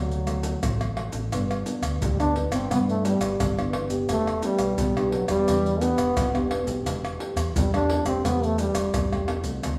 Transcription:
Already playing: fingered electric bass D2, nylon-string guitar D3 A3 C4 F#4, trombone F#3
0.12 pandeiro, maracas
0.26 nylon-string guitar A3 C4 F#4, pandeiro, tamborim, maracas
0.43 pandeiro, maracas
0.62 fingered electric bass A1, nylon-string guitar A2 A3 C4 F#4, pandeiro, tamborim, maracas, surdo
0.81 pandeiro, tamborim, maracas
0.96 nylon-string guitar A3 C4 F#4, pandeiro, tamborim
1.12 fingered electric bass A1, pandeiro, maracas
1.31 fingered electric bass G1, nylon-string guitar G2 E3 B3 D4, pandeiro, tamborim, maracas, surdo
1.51 pandeiro, tamborim, maracas
1.65 nylon-string guitar E3 B3 D4, pandeiro, maracas
1.82 fingered electric bass D2, pandeiro, tamborim, maracas, surdo
2.01 fingered electric bass D2, nylon-string guitar D3, trombone G3, pandeiro, maracas, surdo
2.20 nylon-string guitar E3 B3 D4, trombone D4, pandeiro, tamborim, maracas
2.36 pandeiro, surdo
2.50 fingered electric bass G1, nylon-string guitar E3 B3 D4, trombone C4, pandeiro, tamborim, maracas, surdo
2.70 nylon-string guitar G2 E3 B3 D4, fingered electric bass G2, trombone B3, pandeiro, tamborim, maracas, surdo
2.89 trombone A3, pandeiro, maracas
3.04 nylon-string guitar E3 B3 D4, trombone G3, pandeiro, maracas
3.20 fingered electric bass G1, pandeiro, tamborim, maracas, surdo
3.40 fingered electric bass G1, nylon-string guitar D3, pandeiro, tamborim, maracas, surdo
3.57 nylon-string guitar E3 B3 D4, pandeiro, tamborim, maracas
3.73 pandeiro, tamborim
3.89 fingered electric bass F#1, nylon-string guitar B3 D4 G4, pandeiro, maracas, surdo
4.09 fingered electric bass E1, nylon-string guitar E3, trombone A3, pandeiro, tamborim, maracas, surdo
4.27 pandeiro, tamborim, maracas
4.42 trombone G3, nylon-string guitar B3 D4 G4, pandeiro, maracas
4.59 fingered electric bass B1, pandeiro, tamborim, maracas, surdo
4.78 fingered electric bass B1, nylon-string guitar B2, pandeiro, maracas, surdo
4.96 nylon-string guitar B3 D4 G4, pandeiro, tamborim, maracas
5.12 trombone F#3, pandeiro, surdo
5.28 fingered electric bass E1, trombone G3, nylon-string guitar B3 D4 G4, pandeiro, tamborim, maracas, surdo
5.47 fingered electric bass E2, nylon-string guitar E3 B3 D4 G4, pandeiro, tamborim, maracas, surdo
5.66 pandeiro, maracas
5.81 nylon-string guitar B3 D4 G4, trombone B3, pandeiro, maracas
5.98 fingered electric bass E1, pandeiro, tamborim, maracas, surdo
6.16 fingered electric bass E1, nylon-string guitar B2, pandeiro, tamborim, maracas, surdo
6.33 nylon-string guitar B3 D4 G4, pandeiro, tamborim, maracas
6.51 pandeiro, tamborim
6.65 fingered electric bass B1, nylon-string guitar A3 C4 G4, pandeiro, maracas, surdo
6.84 fingered electric bass E1, nylon-string guitar E3, pandeiro, tamborim, maracas, surdo
7.05 pandeiro, tamborim, maracas
7.17 nylon-string guitar A3 C4 G4, pandeiro
7.36 fingered electric bass E2, pandeiro, tamborim, maracas, surdo
7.54 fingered electric bass E2, nylon-string guitar E3, trombone G3, pandeiro, maracas, surdo
7.72 nylon-string guitar A3 C4 G4, trombone D4, pandeiro, tamborim, maracas
7.90 pandeiro, surdo
8.04 fingered electric bass E1, nylon-string guitar A3 C4 G4, trombone C4, pandeiro, tamborim, maracas, surdo
8.24 fingered electric bass E2, nylon-string guitar E3 A3 C4 G4, trombone B3, pandeiro, tamborim, maracas, surdo
8.43 trombone A3, pandeiro, maracas
8.58 trombone G3, nylon-string guitar A3 C4 G4, pandeiro, maracas
8.74 fingered electric bass E1, pandeiro, tamborim, maracas, surdo
8.93 fingered electric bass E1, nylon-string guitar E3, pandeiro, tamborim, maracas, surdo
9.11 nylon-string guitar A3 C4 G4, pandeiro, tamborim, maracas
9.28 pandeiro, tamborim
9.43 fingered electric bass C2, nylon-string guitar A3 C4 F#4, pandeiro, maracas, surdo
9.62 fingered electric bass D2, nylon-string guitar D3, pandeiro, tamborim, maracas, surdo

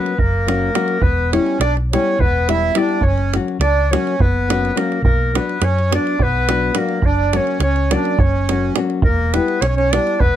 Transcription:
Already playing: nylon-string guitar F#3 A#3 C#4 F#4, accordion B3, clarinet B4
0.06 davul high
0.18 fingered electric bass F#1, accordion A#3, clarinet A#4, davul low
0.47 nylon-string guitar F#3 A#3 C#4 F#4, davul high
0.74 nylon-string guitar F#3 A#3 C#4 F#4, davul high
0.88 davul high
1.01 fingered electric bass E1, accordion B3, clarinet B4, davul low
1.32 nylon-string guitar G3 B3 E4 G4, accordion C#4, clarinet C#5, davul high
1.46 davul high
1.60 fingered electric bass B1, accordion D4, clarinet D5, davul high
1.77 davul high
1.92 nylon-string guitar G3 B3 E4 G4, accordion C#4, clarinet C#5, davul high
2.19 fingered electric bass E1, accordion B3, clarinet B4, davul low
2.48 nylon-string guitar G3 B3 E4 G4, accordion E4, clarinet E5, davul high
2.75 nylon-string guitar G3 B3 E4 G4, clarinet D5, davul high
2.79 accordion D4
2.89 davul high
3.01 fingered electric bass F#1, clarinet C#5, davul low
3.06 accordion C#4
3.18 davul high
3.34 nylon-string guitar F#3 A#3 C#4 F#4, davul high
3.48 davul high
3.59 fingered electric bass C#2, accordion D4, clarinet D5, davul high
3.91 nylon-string guitar F#3 A#3 C#4 F#4, accordion C#4, clarinet C#5, davul high
4.07 davul high
4.19 fingered electric bass F#1, accordion B3, clarinet B4, davul low
4.48 nylon-string guitar F#3 A#3 C#4 F#4, davul high
4.65 davul high
4.75 nylon-string guitar F#3 A#3 C#4 F#4, accordion A#3, clarinet A#4, davul high
4.92 davul high
5.02 fingered electric bass B1, accordion A#3, clarinet A#4, davul low
5.34 nylon-string guitar F#3 B3 D4 F#4, accordion B3, clarinet B4, davul high
5.49 davul high
5.61 fingered electric bass F#2, accordion C#4, clarinet C#5, davul high
5.78 davul high
5.90 nylon-string guitar F#3 B3 D4 F#4, accordion D4, davul high
5.95 clarinet D5
6.07 davul high
6.19 fingered electric bass B1, accordion B3, clarinet B4, davul low
6.49 nylon-string guitar F#3 B3 D4 F#4, davul high
6.75 nylon-string guitar F#3 B3 D4 F#4, accordion A#3, clarinet A#4, davul high
6.89 davul high
7.02 fingered electric bass F#1, clarinet D5, davul low
7.06 accordion D4
7.33 nylon-string guitar F#3 A#3 C#4 F#4, accordion C#4, clarinet C#5, davul high
7.47 davul high
7.60 fingered electric bass C#2, accordion C#4, clarinet C#5, davul high
7.76 davul high
7.91 nylon-string guitar F#3 A#3 C#4 F#4, accordion D4, clarinet D5, davul high
8.05 davul high
8.19 fingered electric bass F#1, clarinet C#5, davul low
8.23 accordion C#4
8.49 nylon-string guitar F#3 A#3 C#4 F#4, davul high
8.76 nylon-string guitar F#3 A#3 C#4 F#4, davul high
8.90 davul high
9.02 fingered electric bass E1, accordion A#3, clarinet A#4, davul low
9.34 nylon-string guitar G3 B3 E4 G4, accordion B3, clarinet B4, davul high
9.48 davul high
9.61 fingered electric bass B1, accordion C#4, clarinet C#5, davul high
9.67 accordion C#4, clarinet C#5
9.76 accordion C#4, clarinet C#5, davul high
9.91 nylon-string guitar G3 B3 E4 G4, accordion D4, clarinet D5, davul high
10.07 davul high
10.20 fingered electric bass E1, accordion B3, clarinet B4, davul low

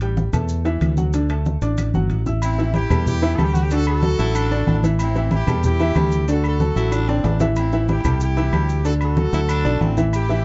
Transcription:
Already playing: fingered electric bass A1
0.01 upright piano G3 G4 G5, high conga, high timbale, maracas
0.17 high conga, maracas
0.33 fingered electric bass E2, upright piano A3 A4 A5, high conga, low conga, high timbale, claves, maracas
0.49 high conga, maracas
0.65 upright piano E3 E4 E5, high conga, high timbale, maracas
0.81 fingered electric bass D2, high conga, high timbale, claves, maracas
0.97 upright piano F#3 F#4 F#5, high conga, maracas
1.13 upright piano D3 D4 D5, high conga, high timbale, maracas
1.29 upright piano A3 A4 A5, high conga, high timbale, claves, maracas
1.45 high conga, maracas
1.62 fingered electric bass A1, upright piano D4 D5 D6, high conga, high timbale, maracas
1.78 high conga, high timbale, claves, maracas
1.94 fingered electric bass G1, upright piano F#3 F#4 F#5, high conga, maracas
2.10 fingered electric bass A1, high timbale, maracas
2.26 upright piano E4 E5 E6, low conga, maracas
2.42 horn section C4 E4, high conga, low agogo, claves, maracas
2.58 upright piano E3 E4 E5, high conga, maracas
2.74 horn section E4 G4, high conga, low agogo, maracas
2.90 fingered electric bass E2, upright piano G3 G4 A4, high conga, low conga, low agogo, claves, maracas
3.07 horn section E4 G4, high conga, low conga, maracas
3.22 upright piano E3 E4 E5, high conga, low agogo, maracas
3.35 fingered electric bass D2, upright piano G3 G4, horn section A4, high conga, low timbale, low agogo, claves
3.39 upright piano A4, maracas
3.44 horn section G4
3.53 horn section F#4, high conga, maracas
3.62 horn section G4
3.71 upright piano D3 D4 D5, horn section F#4 A4, high conga, low agogo, maracas
3.87 horn section F#4 A4, high conga, low agogo, claves, maracas
4.03 upright piano F#3 F#4 A4, high conga, maracas
4.18 fingered electric bass A1, upright piano F#3 F#4 A4, baritone saxophone E4, high conga, maracas
4.34 baritone saxophone D4, high conga, low agogo, claves, maracas
4.51 upright piano D3 D4 D5, high conga, maracas
4.67 fingered electric bass A1, baritone saxophone D4, high conga, low agogo, maracas
4.83 upright piano E3 E4 E5, high conga, maracas
4.99 horn section C4 E4, low agogo, claves, maracas
5.15 upright piano E3 E4 E5, high conga, maracas
5.31 horn section E4 G4, high conga, low agogo, maracas
5.47 fingered electric bass E2, upright piano G3 G4 A4, high conga, low conga, low agogo, claves, maracas
5.63 horn section E4 G4, high conga, low conga, maracas
5.79 upright piano E3 E4 E5, high conga, low agogo, maracas
5.95 fingered electric bass D2, upright piano G3 G4 A4, high conga, low agogo, claves, maracas
6.12 maracas
6.28 upright piano D3 D4 D5, horn section F#4 A4, low agogo, maracas
6.44 horn section F#4 A4, high conga, low agogo, claves, maracas
6.60 upright piano F#3 F#4 A4, high conga, maracas
6.76 fingered electric bass A1, upright piano F#3 F#4 A4, baritone saxophone E4, high conga, maracas
6.92 baritone saxophone D4, high conga, high timbale, low agogo, claves, maracas
7.08 upright piano D3 D4 D5, baritone saxophone C4, high conga, high timbale, maracas
7.24 fingered electric bass A1, baritone saxophone D4, high conga, low timbale, low agogo, maracas
7.40 upright piano E3 E4 E5, high conga, low timbale, maracas
7.56 horn section C4 E4, high conga, low agogo, claves, maracas
7.72 upright piano E3 E4 E5, high conga, maracas
7.88 horn section E4 G4, high conga, low agogo, maracas
8.04 fingered electric bass C2, upright piano G3 G4 A4, high conga, low conga, low agogo, claves, maracas
8.20 horn section E4 G4, high conga, maracas
8.37 upright piano E3 E4 E5, high conga, low agogo, maracas
8.52 fingered electric bass D2, upright piano G3 G4 A4, high conga, low agogo, claves, maracas
8.69 maracas
8.85 upright piano D3 D4 D5, horn section F#4 A4, low agogo, maracas
9.01 horn section F#4 A4, high conga, low agogo, claves, maracas
9.17 upright piano F#3 F#4 A4, high conga, maracas
9.33 fingered electric bass D2, upright piano F#3 F#4 A4, baritone saxophone E4, high conga, maracas
9.49 baritone saxophone D4, high conga, low agogo, claves, maracas
9.65 fingered electric bass B1, upright piano D3 D4 D5, high conga, maracas
9.81 fingered electric bass A1, baritone saxophone C4, high conga, low agogo, maracas
9.97 upright piano E3 E4 E5, high conga, maracas
10.13 horn section E4 G4, low agogo, claves, maracas
10.29 upright piano E3 E4 E5, high conga, maracas

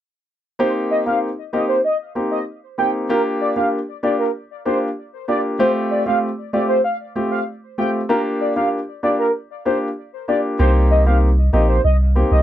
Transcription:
0.59 grand piano A#3 C4 D#4 G4, soft synth lead C5
0.91 soft synth lead D#5
1.06 grand piano A#3 C4 D#4 G4, soft synth lead F5
1.53 grand piano A#3 C4 D#4 G4, soft synth lead D#5
1.69 soft synth lead C5
1.84 soft synth lead D#5
2.15 grand piano A#3 C4 D#4 G4
2.31 soft synth lead D#5
2.78 grand piano A#3 C4 D#4 G4, soft synth lead G5
3.09 grand piano A#3 D4 F4 G4, soft synth lead A#4
3.41 soft synth lead D5
3.56 grand piano A#3 D4 F4 G4, soft synth lead F5
4.03 grand piano A#3 D4 F4 G4, soft synth lead D5
4.19 soft synth lead A#4
4.65 grand piano A#3 D4 F4 G4, soft synth lead C5
5.28 grand piano A#3 D4 F4 G4, soft synth lead D5
5.59 grand piano A3 C4 F4 G4, soft synth lead C5
5.91 soft synth lead D5
6.06 grand piano A3 C4 F4 G4, soft synth lead F5
6.53 grand piano A3 C4 F4 G4, soft synth lead D5
6.69 soft synth lead C5
6.84 soft synth lead F5
7.16 grand piano A3 C4 F4 G4
7.31 soft synth lead F5
7.78 grand piano A3 C4 F4 G4, soft synth lead G5
8.09 grand piano A#3 D4 F4 G4, soft synth lead A#4
8.41 soft synth lead D5
8.56 grand piano A#3 D4 F4 G4, soft synth lead F5
9.03 grand piano A#3 D4 F4 G4, soft synth lead D5
9.19 soft synth lead A#4
9.65 grand piano A#3 D4 F4 G4, soft synth lead C5
10.28 grand piano A#3 D4 F4 G4, soft synth lead D5
10.59 sub bass C2, grand piano A#3 C4 D#4 G4, soft synth lead C5
10.91 soft synth lead D#5
11.06 grand piano A#3 C4 D#4 G4, soft synth lead F5
11.53 sub bass A#1, grand piano A#3 C4 D#4 G4, soft synth lead D#5
11.69 soft synth lead C5
11.84 sub bass C2, soft synth lead D#5
12.15 grand piano A#3 C4 D#4 G4
12.31 sub bass C2, soft synth lead D#5

